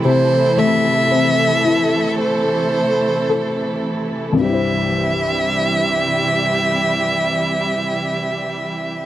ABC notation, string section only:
X:1
M:4/4
L:1/8
Q:1/4=51
K:C
V:1 name="String section" clef=bass
[C,E,A,EA]8 | [C,E,G,EG]8 |]